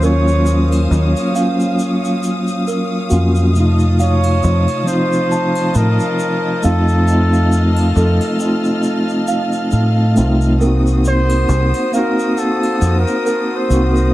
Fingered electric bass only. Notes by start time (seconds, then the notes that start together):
Already playing: D#2
0.91 D#2
3.11 F2
4.44 F2
5.75 A2
6.64 F2
7.96 F2
9.72 A2
10.17 C2
11.49 C2
12.81 F2
13.70 C2